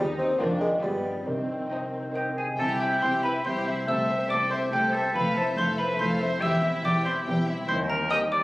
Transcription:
Already playing: cello section D#2, double bass section D#2, harp D#3 G4 G5, violin section G4 C5
0.00 viola section D#4
0.19 bassoon C4, harp G4 C5
0.38 double bass section F1, cello section F2, harp F2, bassoon A#3, viola section D4, violin section F4 C5 D5
0.61 bassoon G#3, harp F4 D5
0.82 double bass section G1, cello section G2, harp G2, bassoon G3, viola section B3, violin section F4 B4 D5
1.05 harp F4 D5
1.26 double bass section C2, harp C3, cello section C3, bassoon D#3, viola section C4
1.49 harp C4
1.71 violin section D#4 C5 D#5, harp D#5
1.93 harp C5
2.15 violin section D#4 C5 D#5, oboe G4, harp D#5, xylophone G5
2.37 oboe G#4, harp C5, xylophone G#5
2.59 double bass section C2, cello section C3, harp C3, viola section E4, violin section G4 G5, oboe A4, xylophone A5
2.80 viola section C4, harp C4, violin section E4 E5, oboe G4, xylophone G5
3.02 double bass section C2, cello section C3, viola section E4, harp E4, violin section G4 G5, oboe C5, xylophone C6
3.22 viola section C4, violin section E4 E5, oboe B4, harp C5, xylophone B5
3.44 double bass section C2, cello section C3, harp C4, viola section E4, violin section G4 G5, oboe C5, xylophone C6
3.66 harp G3, viola section C4, violin section E4 E5
3.87 double bass section C2, cello section C3, harp C3, viola section A3, violin section A4 C5, oboe E5, xylophone E6
4.09 harp A3, viola section C4, violin section C5 E5
4.29 double bass section C2, cello section C3, viola section A3, harp E4, violin section A4 C5, oboe D5, xylophone D6
4.50 viola section C4, oboe C5, violin section C5 E5, harp C5, xylophone C6
4.72 double bass section C2, cello section C3, viola section A3, harp A3, oboe G4, violin section A4 C5, xylophone G5
4.93 harp C4, viola section C4, oboe A4, violin section C5 E5, xylophone A5
5.14 double bass section F1, cello section F2, harp F3, viola section A3, violin section A4 F5, oboe B4, xylophone B5
5.36 viola section C4, harp E4, oboe A4, violin section C5 E5, xylophone A5
5.57 double bass section F1, cello section F2, viola section A3, violin section A4 F5, oboe C5, harp C5, xylophone C6
5.78 viola section C4, harp A4, oboe B4, violin section C5 E5, xylophone B5
5.99 double bass section F1, cello section F2, viola section A3, harp E4, violin section A4 F5, oboe C5, xylophone C6
6.20 harp A3, viola section C4, violin section C5 E5
6.41 double bass section E1, cello section E2, harp E3, viola section E4, violin section G4 G5, oboe E5, xylophone E6
6.63 viola section C4, harp E4, violin section E4 E5
6.83 double bass section E1, cello section E2, viola section E4, violin section G4 G5, harp C5, oboe D5, xylophone D6
7.03 viola section C4, violin section E4 E5, harp G4, oboe C5, xylophone C6
7.24 double bass section E1, cello section E2, viola section E4, harp E4, violin section G4 G5
7.46 harp G3, viola section C4, violin section E4 E5
7.68 double bass section D#2, cello section D#2, harp D#3, oboe C5, xylophone C6
7.89 harp C4, oboe A#4, xylophone A#5
8.11 viola section C4, violin section G4 G5, harp C5, oboe D#5, xylophone D#6
8.32 harp G4, oboe D5, xylophone D6

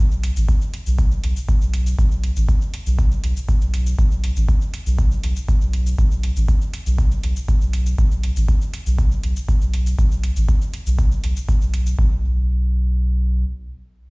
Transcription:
0.00 sub bass B1
0.11 shaker
0.23 closed hi-hat
0.36 sub bass A1, shaker
0.49 kick, shaker
0.62 shaker
0.74 closed hi-hat
0.86 sub bass B1, shaker
0.99 kick, shaker
1.11 shaker
1.24 sub bass B1, closed hi-hat
1.36 shaker
1.49 kick, shaker
1.61 sub bass B1, shaker
1.74 closed hi-hat
1.86 shaker
1.99 sub bass B1, kick, shaker
2.12 shaker
2.24 closed hi-hat
2.36 sub bass A1, shaker
2.49 kick, shaker
2.62 shaker
2.74 closed hi-hat
2.87 sub bass B1, shaker
2.99 kick, shaker
3.12 shaker
3.24 sub bass B1, closed hi-hat
3.37 shaker
3.49 kick, shaker
3.62 sub bass B1, shaker
3.74 closed hi-hat
3.87 shaker
3.99 sub bass B1, kick, shaker
4.12 shaker
4.24 closed hi-hat
4.37 sub bass A1, shaker
4.49 kick, shaker
4.62 shaker
4.74 closed hi-hat
4.86 sub bass B1, shaker
4.99 kick, shaker
5.11 shaker
5.24 sub bass B1, closed hi-hat
5.36 shaker
5.49 kick, shaker
5.61 sub bass B1, shaker
5.73 closed hi-hat
5.86 shaker
5.98 sub bass B1, kick, shaker
6.11 shaker
6.23 closed hi-hat
6.36 sub bass A1, shaker
6.48 kick, shaker
6.61 shaker
6.74 closed hi-hat
6.86 sub bass B1, shaker
6.99 kick, shaker
7.11 shaker
7.23 sub bass B1, closed hi-hat
7.36 shaker
7.48 kick, shaker
7.61 sub bass B1, shaker
7.73 closed hi-hat
7.86 shaker
7.98 sub bass B1, kick, shaker
8.11 shaker
8.23 closed hi-hat
8.36 sub bass A1, shaker
8.48 kick, shaker
8.61 shaker
8.74 closed hi-hat
8.86 sub bass B1, shaker
8.99 kick, shaker
9.12 shaker
9.24 sub bass B1, closed hi-hat
9.36 shaker
9.49 kick, shaker
9.61 sub bass B1, shaker
9.74 closed hi-hat
9.86 shaker
9.99 sub bass B1, kick, shaker
10.12 shaker
10.23 closed hi-hat
10.36 sub bass A1, shaker
10.49 kick, shaker
10.61 shaker
10.74 closed hi-hat
10.87 sub bass B1, shaker
10.99 kick, shaker
11.12 shaker
11.24 sub bass B1, closed hi-hat
11.37 shaker
11.49 kick, shaker
11.62 sub bass B1, shaker
11.74 closed hi-hat
11.87 shaker
11.99 sub bass B1, kick

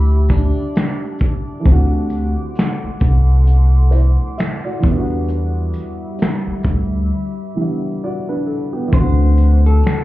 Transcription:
Already playing: upright bass D2, upright piano E3 G3 B3 D4 F#5, clean electric guitar E4, ambient pad G4 E5 A5 D6
0.28 clean electric guitar D4, kick, shaker
0.75 finger snap, snare, closed hi-hat
1.19 kick, shaker
1.60 upright piano E3 A3
1.65 upright bass D2, upright piano C4 D4, ambient pad A4 F#5 C6, kick, closed hi-hat
1.72 upright piano F#4
2.10 shaker
2.55 snare, closed hi-hat
2.59 finger snap
2.84 muted upright bass stroke
3.00 upright bass C2, kick, shaker
3.47 closed hi-hat
3.91 upright piano E4 C5, closed hi-hat, shaker
4.38 upright piano E5, finger snap, snare, closed hi-hat
4.65 upright piano F#4 D5
4.79 upright piano E3 G3, ambient pad B5, shaker
4.83 upright bass E2, ambient pad G3 E5, upright piano B3, kick
4.88 upright piano D4 E4
4.98 upright piano F#4
5.28 closed hi-hat
5.73 shaker
6.18 snare, closed hi-hat
6.23 finger snap
6.47 muted upright bass stroke
6.63 upright bass D2, kick, shaker
7.55 upright piano E3 G3 B3
7.60 upright piano D4 E4
8.04 upright piano F#4 D5
8.29 upright piano D4 B4
8.47 upright piano A4
8.73 upright piano B3 G4
8.88 upright piano E3 A3
8.92 upright bass D2, upright piano C4, ambient pad A4 F#5 A5 D6, clean electric guitar C5, kick, closed hi-hat
8.97 upright piano D4 F#4
9.37 shaker
9.66 clean electric guitar A4
9.83 snare, closed hi-hat
9.87 finger snap

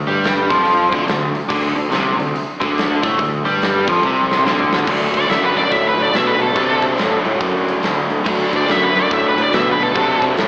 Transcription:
0.07 fingered electric bass G2, overdriven electric guitar G3, open hi-hat
0.24 snare, open hi-hat
0.49 fingered electric bass F2, overdriven electric guitar F3, kick, open hi-hat
0.65 open hi-hat
0.91 fingered electric bass D2, overdriven electric guitar D3, kick, open hi-hat
1.07 fingered electric bass D2, overdriven electric guitar D3, snare, open hi-hat
1.35 open hi-hat
1.49 fingered electric bass D2, overdriven electric guitar D3, kick, crash
1.76 fingered electric bass D2, overdriven electric guitar D3, open hi-hat
1.91 fingered electric bass C2, overdriven electric guitar C3, snare, open hi-hat
2.18 fingered electric bass D2, overdriven electric guitar D3, open hi-hat
2.36 open hi-hat
2.60 fingered electric bass D2, overdriven electric guitar D3, kick, open hi-hat
2.78 snare, open hi-hat
3.02 fingered electric bass A2, overdriven electric guitar A3, kick, open hi-hat
3.18 fingered electric bass D2, overdriven electric guitar D3, kick, open hi-hat
3.45 fingered electric bass G2, overdriven electric guitar G3, open hi-hat
3.62 snare, open hi-hat
3.87 fingered electric bass F2, overdriven electric guitar F3, kick, open hi-hat
4.03 fingered electric bass C2, overdriven electric guitar C3, kick
4.32 snare
4.45 fingered electric bass D2, overdriven electric guitar D3, snare
4.59 mid tom
4.73 snare
4.79 floor tom
4.87 fingered electric bass D2, overdriven electric guitar D3 F#3 A3, kick, crash
4.91 overdriven electric guitar D4
5.14 fingered electric bass D2, lead electric guitar D5, kick, open hi-hat
5.30 fingered electric bass F#2, lead electric guitar E5, snare, open hi-hat
5.44 lead electric guitar B4
5.56 fingered electric bass F#2, lead electric guitar D5, open hi-hat
5.72 fingered electric bass A2, lead electric guitar E5, kick, open hi-hat
5.88 lead electric guitar B4
5.98 fingered electric bass A2, open hi-hat
6.02 lead electric guitar D5
6.14 fingered electric bass B2, lead electric guitar E5, snare, open hi-hat
6.27 lead electric guitar B4
6.40 fingered electric bass B2, lead electric guitar A4, open hi-hat
6.55 fingered electric bass C3, overdriven electric guitar D3 F#3 A3 D4, kick, open hi-hat
6.82 fingered electric bass C3, kick, open hi-hat
6.98 fingered electric bass A2, snare, open hi-hat
7.25 fingered electric bass A2, open hi-hat
7.41 fingered electric bass F#2, kick, open hi-hat
7.68 open hi-hat
7.83 fingered electric bass D2, snare, open hi-hat
8.10 fingered electric bass D2, open hi-hat
8.24 fingered electric bass D2, overdriven electric guitar D3 F#3 A3, kick, crash
8.28 overdriven electric guitar D4
8.53 fingered electric bass D2, lead electric guitar D5, kick, open hi-hat
8.68 fingered electric bass F#2, lead electric guitar E5, snare, open hi-hat
8.84 lead electric guitar B4
8.95 fingered electric bass F#2, lead electric guitar D5, open hi-hat
9.11 fingered electric bass A2, lead electric guitar E5, kick, open hi-hat
9.28 lead electric guitar B4
9.38 fingered electric bass A2, open hi-hat
9.42 lead electric guitar D5
9.53 fingered electric bass B2, lead electric guitar E5, snare, open hi-hat
9.72 lead electric guitar B4
9.80 fingered electric bass B2, lead electric guitar A4, open hi-hat
9.94 fingered electric bass C3, overdriven electric guitar D3 F#3 A3, kick, open hi-hat
9.98 overdriven electric guitar D4
10.22 fingered electric bass C3, kick, open hi-hat
10.37 fingered electric bass A2, snare, open hi-hat

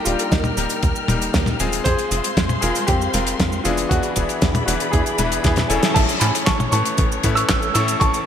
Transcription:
Already playing: string section A#4 G5 F6
0.05 analog synth bass D#1, electric grand piano G3 A#3 D#4 G4, grand piano D4 F4, closed hi-hat, cabasa
0.19 closed hi-hat, cabasa
0.30 analog synth bass D#2, grand piano A#3 D#4, kick, snare, closed hi-hat, cabasa
0.44 high tom, cabasa
0.57 analog synth bass D#1, electric grand piano G3 A#3 D#4 A#4, closed hi-hat, cabasa
0.69 closed hi-hat, cabasa
0.83 analog synth bass D#2, kick, closed hi-hat, cabasa
0.96 cabasa
1.08 analog synth bass D#1, electric grand piano G3 A#3 D#4 A#4, closed hi-hat, high tom, cabasa
1.22 closed hi-hat, cabasa
1.34 analog synth bass D#2, kick, snare, closed hi-hat, cabasa
1.46 snare, high tom, cabasa
1.60 analog synth bass D#1, electric grand piano G#3 C4 F4 G#4, closed hi-hat, cabasa
1.72 closed hi-hat, cabasa
1.84 analog synth bass F2, string section G#3 C5 F5 C6, grand piano G#4 C5, kick, closed hi-hat, cabasa
1.99 closed hi-hat, cabasa
2.11 analog synth bass F1, electric grand piano G#3 C4 F4 G#4, closed hi-hat, cabasa
2.24 closed hi-hat, cabasa
2.37 analog synth bass F2, kick, snare, closed hi-hat, cabasa
2.49 high tom, cabasa
2.61 analog synth bass F1, electric grand piano G#3 C4 F4 A#4, grand piano F4 G#4, closed hi-hat, cabasa
2.75 closed hi-hat, cabasa
2.87 analog synth bass F2, grand piano C4 G4, kick, closed hi-hat, cabasa
3.02 cabasa
3.14 analog synth bass F1, electric grand piano G#3 C4 F4 A#4, closed hi-hat, cabasa
3.27 closed hi-hat, cabasa
3.40 analog synth bass F2, kick, snare, closed hi-hat, cabasa
3.52 cabasa
3.64 analog synth bass F1, electric grand piano E3 B3 D4 E4 G#4, grand piano D4 F4, closed hi-hat, cabasa
3.77 closed hi-hat, cabasa
3.89 analog synth bass E2, grand piano D4 F#4, string section G#4 D5 E5 B5, kick, closed hi-hat, cabasa
4.03 closed hi-hat, cabasa
4.16 analog synth bass E1, electric grand piano E3 B3 D4 E4 G#4, kick, closed hi-hat, cabasa
4.29 closed hi-hat, cabasa
4.42 analog synth bass E2, kick, snare, closed hi-hat, cabasa
4.55 closed hi-hat, high tom, cabasa
4.66 analog synth bass E1, electric grand piano E3 B3 D4 E4 B4, grand piano D4 F#4, closed hi-hat, cabasa
4.80 closed hi-hat, cabasa
4.92 analog synth bass E2, grand piano E4 G#4, kick, closed hi-hat, cabasa
5.06 closed hi-hat, cabasa
5.18 analog synth bass E1, electric grand piano E3 B3 D4 E4 B4, closed hi-hat, high tom, cabasa
5.32 closed hi-hat, cabasa
5.43 analog synth bass E2, grand piano E4 G#4, kick, snare, closed hi-hat, cabasa
5.56 snare, closed hi-hat, high tom, cabasa
5.69 analog synth bass E1, electric grand piano A2 A3 C#4 E4 A4, grand piano E5 G#5, closed hi-hat, cabasa
5.83 snare, closed hi-hat, cabasa
5.94 analog synth bass A1, string section E3 A3 C#4 A4 C#5, grand piano E5 A5, kick, closed hi-hat, crash, cabasa
6.09 closed hi-hat, cabasa
6.20 electric grand piano A2 A3 C#4 E4 A4, analog synth bass A2, grand piano G#5 B5, clap, closed hi-hat, cabasa
6.35 closed hi-hat, cabasa
6.46 analog synth bass A1, grand piano A5 C#6, kick, snare, clap, closed hi-hat, cabasa
6.60 high tom, cabasa
6.71 analog synth bass A2, electric grand piano A2 A3 C#4 E4 B4, grand piano A5 C#6, closed hi-hat, cabasa
6.85 closed hi-hat, cabasa
6.98 analog synth bass A1, kick, closed hi-hat, cabasa
7.12 cabasa
7.23 electric grand piano A2 A3 C#4 E4 B4, analog synth bass A2, kick, closed hi-hat, cabasa
7.35 grand piano C#6 E6, closed hi-hat, cabasa
7.49 analog synth bass A1, kick, snare, clap, closed hi-hat, cabasa
7.62 cabasa
7.74 electric grand piano A2 A3 C#4 E4 A4, analog synth bass A2, grand piano C#6 E6, closed hi-hat, cabasa
7.88 closed hi-hat, cabasa
8.00 analog synth bass A1, string section B4, grand piano A5 C#6, kick, closed hi-hat, cabasa
8.14 closed hi-hat, cabasa

